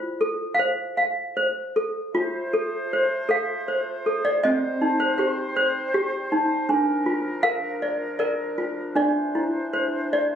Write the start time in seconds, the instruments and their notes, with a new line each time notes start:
Already playing: toy piano F4 C5
0.21 toy piano A4
0.54 toy piano F5
0.59 toy piano C5
0.97 toy piano F5
1.37 toy piano C5
1.76 toy piano A4
2.13 woodwind section A3 F4 C5, toy piano F4
2.53 toy piano A4
2.93 toy piano C5
3.29 toy piano A4 F5
3.68 toy piano C5
4.06 toy piano A4
4.25 toy piano D5
4.42 woodwind section G3 D#4 C5, toy piano C4 D#5
4.81 toy piano D#4
5.00 toy piano C5
5.18 toy piano G4 C5
5.56 toy piano C5
5.94 toy piano G4
6.32 toy piano D#4
6.69 woodwind section F3 D4 A#4, toy piano D4
7.06 toy piano F4
7.43 toy piano A#4 F5
7.82 toy piano D5
8.19 toy piano A#4 D5
8.58 toy piano F4
8.96 woodwind section E3 C5, toy piano D4 D5
9.35 toy piano E4
9.73 toy piano C5
10.13 toy piano D5